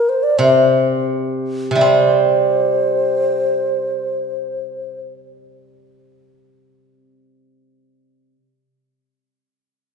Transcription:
0.00 0.11 A#4 medium
0.09 0.25 C5 medium
0.23 0.39 D5 medium
0.38 1.70 C3 medium
0.38 1.05 C5 medium
1.71 8.34 C3 soft
1.75 7.82 G3 soft
1.81 6.91 C4 soft
1.81 5.00 C5 medium

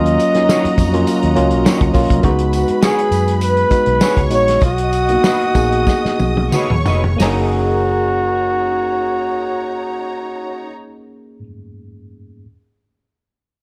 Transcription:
0.00 0.16 D#2 loud
0.00 0.28 F#3 medium
0.00 0.28 A#3 medium
0.00 0.28 C#4 medium
0.00 0.28 F4 loud
0.00 2.19 F#4 medium
0.00 1.04 D#5 loud
0.00 2.19 D#5 medium
0.00 2.20 A#5 medium
0.06 closed hi-hat medium
0.20 closed hi-hat medium
0.20 tambourine soft
0.34 0.83 F#3 medium
0.34 0.83 A#3 medium
0.34 0.84 C#4 medium
0.34 0.84 D#4 medium
0.34 snare soft
0.34 closed hi-hat medium
0.49 0.66 A#3 medium
0.49 0.66 D#4 medium
0.49 0.66 F#4 medium
0.49 0.66 C#5 medium
0.49 snare medium
0.49 tambourine medium
0.65 muted fingered electric bass stroke medium
0.65 closed hi-hat medium
0.78 1.03 F2 medium
0.78 kick medium
0.78 closed hi-hat medium
0.78 tambourine medium
0.93 1.29 F#3 medium
0.93 1.30 A#3 medium
0.93 1.30 C#4 medium
0.93 1.30 F4 loud
0.93 closed hi-hat medium
1.07 closed hi-hat medium
1.07 tambourine soft
1.23 1.35 D#2 loud
1.23 closed hi-hat soft
1.35 1.53 C#2 loud
1.35 1.86 F#3 medium
1.35 1.86 A#3 medium
1.35 1.86 C#4 medium
1.35 1.86 F4 loud
1.35 closed hi-hat medium
1.51 1.64 B1 medium
1.51 closed hi-hat medium
1.65 1.82 A#3 medium
1.65 1.82 D#4 medium
1.65 1.83 F#4 medium
1.65 1.83 C#5 medium
1.65 snare loud
1.65 tambourine medium
1.81 1.93 C#2 medium
1.81 kick loud
1.81 closed hi-hat medium
1.93 2.08 B1 medium
1.93 2.19 F#3 medium
1.93 2.19 A#3 medium
1.93 2.19 C#4 medium
1.93 2.20 F4 medium
1.93 kick loud
1.93 open hi-hat medium
1.93 tambourine soft
2.10 2.22 C2 medium
2.10 kick medium
2.10 closed hi-hat medium
2.23 2.63 C#2 loud
2.23 3.23 G#3 loud
2.23 3.23 B3 medium
2.23 3.24 D#4 medium
2.23 3.24 F#4 loud
2.23 3.98 B4 medium
2.23 3.97 B5 medium
2.23 kick loud
2.23 closed hi-hat medium
2.39 closed hi-hat medium
2.53 2.81 F#4 medium
2.53 closed hi-hat medium
2.53 tambourine soft
2.68 muted fingered electric bass stroke soft
2.68 closed hi-hat medium
2.82 2.99 B3 medium
2.82 2.99 F#4 medium
2.82 2.99 G#4 medium
2.82 3.38 G#4 loud
2.82 3.00 C#5 medium
2.82 snare medium
2.82 tambourine medium
2.99 closed hi-hat medium
3.11 3.63 F#2 medium
3.11 closed hi-hat medium
3.11 tambourine soft
3.28 closed hi-hat medium
3.41 4.28 B4 loud
3.41 closed hi-hat medium
3.41 tambourine soft
3.57 closed hi-hat soft
3.70 4.22 G#3 medium
3.70 4.22 B3 medium
3.70 4.22 D#4 medium
3.70 4.23 F#4 medium
3.70 muted fingered electric bass stroke soft
3.70 kick medium
3.70 closed hi-hat medium
3.70 tambourine soft
3.86 3.99 B1 medium
3.86 closed hi-hat soft
4.01 4.18 B3 medium
4.01 4.18 F#4 medium
4.01 4.19 G#4 medium
4.01 4.60 C#5 medium
4.01 4.19 C#5 medium
4.01 4.60 C#6 medium
4.01 snare loud
4.01 tambourine medium
4.17 4.31 C#2 medium
4.17 kick medium
4.17 closed hi-hat medium
4.30 4.58 A#1 medium
4.30 4.61 G#3 medium
4.30 4.61 B3 medium
4.30 4.61 D#4 medium
4.30 4.62 F#4 medium
4.30 4.61 C#5 loud
4.30 closed hi-hat medium
4.30 tambourine soft
4.48 snare soft
4.48 closed hi-hat medium
4.61 5.16 B1 medium
4.61 6.49 D#5 medium
4.61 6.49 D#6 medium
4.61 kick loud
4.61 closed hi-hat medium
4.61 tambourine soft
4.65 6.83 F#4 loud
4.78 closed hi-hat medium
4.93 closed hi-hat medium
4.93 tambourine soft
5.09 5.48 A#3 medium
5.09 5.49 B3 medium
5.09 5.49 D#4 medium
5.09 5.49 F#4 medium
5.09 closed hi-hat medium
5.24 5.42 D#4 medium
5.24 5.42 F#4 medium
5.24 5.42 B4 medium
5.24 5.43 D#5 medium
5.24 snare medium
5.24 tambourine medium
5.41 closed hi-hat soft
5.54 5.83 A#1 medium
5.54 6.66 A#3 medium
5.54 6.66 B3 medium
5.54 6.66 D#4 medium
5.54 6.66 G#4 medium
5.54 kick medium
5.54 closed hi-hat medium
5.54 tambourine soft
5.72 closed hi-hat soft
5.87 kick medium
5.87 snare medium
5.87 tambourine soft
6.05 muted fingered electric bass stroke soft
6.05 snare soft
6.19 6.49 B1 medium
6.19 high tom medium
6.19 tambourine soft
6.37 high tom medium
6.52 6.71 D#4 medium
6.52 6.72 F#4 medium
6.52 6.72 B4 medium
6.52 7.19 C#5 medium
6.52 6.72 D#5 medium
6.52 7.19 C#6 medium
6.52 mid tom medium
6.52 tambourine medium
6.70 6.84 D#2 medium
6.70 mid tom medium
6.85 7.16 F1 medium
6.85 7.01 D#4 soft
6.85 7.01 F#4 medium
6.85 7.02 B4 medium
6.85 7.02 D#5 medium
6.85 floor tom loud
6.85 tambourine soft
7.04 floor tom medium
7.16 11.40 F#1 medium
7.16 11.38 A#3 medium
7.16 11.39 C#4 medium
7.16 11.43 C#4 medium
7.16 11.40 D#4 medium
7.16 open hi-hat medium
7.16 tambourine medium
7.20 10.70 D#4 medium
7.20 10.71 F#4 medium
7.20 11.44 G#4 medium
7.20 11.41 G#4 medium
7.20 11.45 A#4 medium
7.20 10.70 C#5 medium
7.20 11.46 D#5 medium
7.20 10.70 A#5 medium
7.20 snare medium

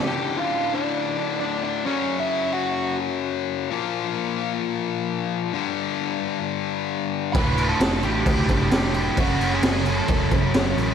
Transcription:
0.03 1.85 D2 medium
0.03 1.86 A2 loud
0.03 1.86 D3 loud
0.03 0.36 G4 medium
0.03 0.39 G5 medium
0.37 0.69 F4 medium
0.37 0.74 F5 loud
0.74 1.38 D4 medium
0.74 1.39 D5 loud
1.40 1.62 D4 medium
1.40 1.63 D5 medium
1.63 1.85 D4 medium
1.63 1.86 D5 loud
1.85 3.68 F#2 medium
1.85 3.68 C#3 medium
1.85 3.69 F#3 loud
1.85 2.18 C#4 medium
1.85 2.18 C#5 medium
2.19 2.52 E4 medium
2.19 2.53 E5 medium
2.53 2.97 F#4 medium
2.53 2.97 F#5 medium
3.70 5.52 A#2 loud
3.70 5.52 F3 loud
3.70 5.53 A#3 loud
5.53 7.34 G2 medium
5.53 7.35 D3 medium
5.53 7.35 G3 loud
7.33 7.73 D1 medium
7.33 8.02 D2 loud
7.33 9.16 D2 medium
7.33 8.02 A2 medium
7.33 8.03 D3 loud
7.33 8.04 A3 loud
7.33 7.66 B4 medium
7.33 7.69 B5 loud
7.33 kick loud
7.33 crash medium
7.37 9.18 A2 loud
7.37 9.18 D3 medium
7.37 8.02 F4 loud
7.58 crash medium
7.69 8.01 A4 medium
7.69 8.04 A5 loud
7.80 7.99 F1 loud
7.80 snare loud
7.80 crash medium
8.03 8.22 A1 medium
8.03 8.71 D2 medium
8.03 8.72 A2 medium
8.03 8.72 D3 medium
8.03 8.71 A3 medium
8.03 8.70 F4 medium
8.03 8.69 G4 medium
8.03 8.72 G5 loud
8.03 crash medium
8.26 8.45 D2 medium
8.26 kick loud
8.26 crash loud
8.49 8.68 G1 medium
8.49 kick loud
8.49 crash medium
8.71 9.09 F1 medium
8.71 9.15 D2 medium
8.71 9.17 A2 medium
8.71 9.17 D3 medium
8.71 9.17 A3 medium
8.71 8.94 G4 medium
8.71 8.93 G5 medium
8.71 snare loud
8.71 crash medium
8.75 9.18 F4 loud
8.94 9.16 G4 medium
8.94 9.18 G5 loud
8.94 crash medium
9.16 9.36 F#1 medium
9.16 9.84 F#2 loud
9.16 10.94 F#2 loud
9.16 9.85 C#3 loud
9.16 10.94 C#3 medium
9.16 9.85 F#3 loud
9.16 10.94 F#3 loud
9.16 9.85 A3 loud
9.16 9.85 C#4 loud
9.16 9.51 F#4 medium
9.16 9.83 F#4 loud
9.16 kick loud
9.16 crash loud
9.20 9.54 F#5 medium
9.39 9.59 F#1 medium
9.39 crash medium
9.53 9.85 G#4 medium
9.53 9.89 G#5 medium
9.62 10.01 F#1 loud
9.62 snare loud
9.62 crash loud
9.84 10.53 F#2 medium
9.84 10.54 C#3 medium
9.84 10.54 F#3 medium
9.84 10.53 A3 medium
9.84 10.53 C#4 medium
9.84 10.52 F#4 medium
9.84 crash medium
9.89 10.30 A4 medium
9.89 10.31 A5 loud
10.08 10.28 E1 loud
10.08 kick loud
10.08 crash medium
10.31 10.51 F#1 loud
10.31 kick loud
10.31 crash medium
10.54 10.73 F#1 medium
10.54 10.94 F#2 medium
10.54 10.94 C#3 medium
10.54 10.94 F#3 medium
10.54 10.94 A3 medium
10.54 10.94 C#4 medium
10.54 10.94 F#4 loud
10.54 snare loud
10.54 crash medium
10.78 10.94 A1 loud
10.78 crash medium

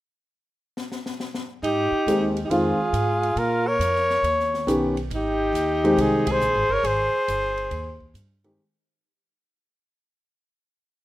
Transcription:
0.77 snare medium
0.92 snare medium
1.06 snare medium
1.20 snare medium
1.34 snare medium
1.63 1.90 G#2 medium
1.63 2.32 D#4 medium
1.63 2.33 G4 loud
1.63 ride medium
1.92 muted upright bass stroke soft
2.07 2.49 D#2 medium
2.07 2.34 D#3 medium
2.07 2.34 G#3 medium
2.07 2.34 C4 soft
2.07 2.34 G4 medium
2.07 hi-hat pedal soft
2.07 ride medium
2.37 ride soft
2.45 2.51 D#4 soft
2.45 2.53 G4 medium
2.50 2.77 F2 medium
2.50 2.77 D#3 medium
2.50 2.77 G#3 medium
2.50 2.77 C4 medium
2.50 3.38 F4 medium
2.50 2.77 F4 medium
2.50 3.40 G#4 medium
2.50 ride medium
2.78 muted upright bass stroke soft
2.93 3.36 G#2 medium
2.93 hi-hat pedal soft
2.93 ride medium
3.23 ride soft
3.36 3.79 A#2 medium
3.36 3.69 F4 medium
3.36 3.69 A#4 medium
3.36 ride medium
3.68 4.25 A#4 medium
3.68 4.98 C#5 loud
3.79 4.22 F2 medium
3.79 hi-hat pedal medium
3.79 ride medium
3.96 snare soft
4.10 snare soft
4.23 4.66 D#2 medium
4.23 ride medium
4.40 snare soft
4.54 snare soft
4.67 5.10 B1 medium
4.67 4.94 D#3 medium
4.67 4.94 B3 medium
4.67 4.94 C#4 medium
4.67 4.94 G4 medium
4.67 hi-hat pedal soft
4.67 ride medium
4.97 ride soft
5.10 5.52 G#1 medium
5.10 ride medium
5.15 5.99 D#4 medium
5.15 6.03 G4 medium
5.53 5.96 D#2 medium
5.53 hi-hat pedal soft
5.53 ride medium
5.84 6.39 D#3 medium
5.84 6.39 G#3 medium
5.84 6.39 C4 medium
5.84 6.39 G4 medium
5.84 ride soft
5.97 6.40 C2 medium
5.97 6.30 D#4 medium
5.97 ride medium
6.01 6.33 G#4 medium
6.27 6.73 G#4 medium
6.27 kick medium
6.27 ride medium
6.32 6.75 C5 loud
6.40 6.55 A#1 medium
6.40 hi-hat pedal soft
6.55 6.69 G#1 soft
6.69 6.83 G1 medium
6.69 6.86 A#4 medium
6.73 6.88 C#5 medium
6.83 7.11 G#1 medium
6.83 8.15 G#4 medium
6.83 8.16 C5 medium
6.83 ride medium
7.28 7.70 G1 medium
7.28 hi-hat pedal soft
7.28 ride medium
7.57 ride soft
7.71 8.14 D#2 medium
7.71 ride medium
8.00 kick soft
8.14 8.56 G2 medium
8.14 hi-hat pedal soft
8.14 ride medium
8.44 8.58 D#3 medium
8.44 8.59 G#3 medium
8.44 8.59 C4 medium
8.44 8.59 G4 medium
8.44 ride soft

